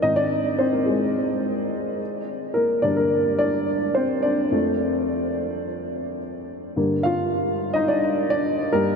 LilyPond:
<<
  \new Staff \with { instrumentName = "Upright piano" } { \time 4/4 \key g \minor \tempo 4 = 107 <ees' ees''>16 <d' d''>8. <c' c''>16 <bes bes'>16 <aes aes'>4 r4. | r8 <bes bes'>8 <d' d''>16 <bes bes'>8. <d' d''>4 <c' c''>8 <d' d''>8~ | <d' d''>2. r4 | r8 <f' f''>4~ <f' f''>16 <ees' ees''>16 <d' d''>8. <d' d''>8. bes'8 | }
  \new Staff \with { instrumentName = "Upright piano" } { \clef bass \time 4/4 \key g \minor <aes, ees c'>2.~ <aes, ees c'>8 r8 | r4 <g, d bes>2. | <f, f a>4. r2 r8 | <g, d bes>8 r2. <g, g bes>8 | }
>>